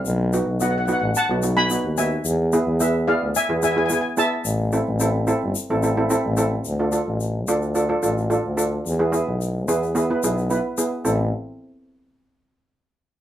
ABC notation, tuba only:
X:1
M:4/4
L:1/16
Q:1/4=109
K:Am
V:1 name="Tuba" clef=bass
B,,,3 B,,,4 A,,, z B,,,4 ^D,,3 | E,,3 E,,4 D,, z E,,4 z3 | A,,,3 A,,,4 G,,, z A,,,4 A,,,3 | D,,3 A,,,3 D,,4 A,,,3 D,,3 |
E,,3 B,,,3 E,,4 B,,,3 z3 | A,,,2 z12 z2 |]